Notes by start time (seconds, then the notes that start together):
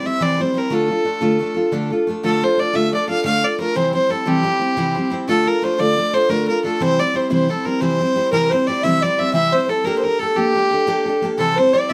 0.03 G3 C4 E4 C5 E5
0.20 C3 E3 G3 C4 E4 C5 D5
0.38 G3 C4 E4 C5
0.54 G3 C4 E4 A#4 C5
0.70 D3 A3 D4 F4 A4
0.88 D4 F4 A4
1.04 A3 D4 F4 A4
1.21 D3 A3 D4 F4 A4
1.39 A3 D4 F4 A4
1.54 D4 F4 A4
1.72 D3 A3 D4 F4 A4
1.90 D4 F4 A4
2.07 A3 D4 F4 A4
2.23 D3 A3 D4 F4 A4
2.42 D4 F4 A4 C5
2.58 A3 D4 F4 A4 D5
2.73 D3 A3 D4 F4 A4 E5
2.91 A3 D4 F4 A4 D5
3.08 D4 F4 A4 F5
3.24 D3 A3 D4 F4 A4 F5
3.42 D4 F4 A4 D5
3.58 A3 D4 F4 A4 A#4
3.75 C3 E3 G3 C4 E4 C5
3.93 G3 C4 E4 C5
4.09 G3 C4 E4 A4 C5
4.26 C3 E3 G3 C4 E4 G4 C5
4.43 G3 C4 E4 C5
4.59 G3 C4 E4 C5
4.77 C3 E3 G3 C4 E4 C5
4.95 G3 C4 E4 C5
5.10 G3 C4 E4 C5
5.27 D3 A3 D4 F4 A4
5.45 D4 F4 A4 A#4
5.62 A3 D4 F4 A4 C5
5.78 D3 A3 D4 F4 A4 D5
5.97 A3 D4 F4 A4
6.13 D4 F4 A4 C5
6.29 D3 A3 D4 F4 A4 A#4
6.48 D4 F4 A4 A#4
6.64 A3 D4 F4 A4
6.80 C3 E3 G3 C4 E4 C5
6.99 G3 C4 E4 C5 D5
7.14 G3 C4 E4 C5
7.30 C3 E3 G3 C4 E4 C5
7.47 G3 C4 E4 A4 C5
7.65 G3 C4 E4 A#4 C5
7.81 C3 E3 G3 C4 E4 C5
7.99 G3 C4 E4 C5
8.16 G3 C4 E4 C5
8.31 C3 E3 G3 C4 E4 A#4 C5
8.50 C4 E4 C5
8.54 G3
8.67 G3 C4 E4 D5
8.71 C5
8.82 C3 E3 G3 C4 E4 C5 E5
9.02 G3 C4 E4 C5 D5
9.18 G3 C4 E4 C5 E5
9.33 C3 E3 G3 C4 E4 C5 E5
9.51 G3 C4 E4 C5
9.67 G3 C4 E4 A4 C5
9.84 A#3 D4 G4 A4 A#4
9.98 C5
10.03 D4 G4 A4 A#4
10.19 A#3 D4 G4 A4
10.35 A#3 D4 G4 A4
10.55 A#3 D4 G4 A4
10.71 D4 G4 A4
10.87 A#3 D4 G4 A4
11.06 D4 G4 A4
11.22 A#3 D4 G4 A4
11.38 C3 E3 G3 C4 E4 A4 C5
11.56 G3 C4 E4 C5
11.73 G3 C4 E4 C5 D5
11.89 C5 E5